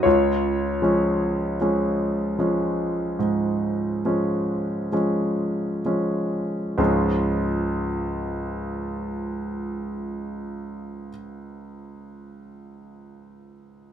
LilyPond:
\new Staff \with { instrumentName = "Grand piano" } { \clef bass \time 4/4 \key des \major \tempo 4 = 34 << { <f' des''>2. r4 | <des, aes, f aes des' f'>1 | } \\ { des,8 <f aes des'>8 <f aes des'>8 <f aes des'>8 aes,8 <f aes des'>8 <f aes des'>8 <f aes des'>8 | r1 | } >> }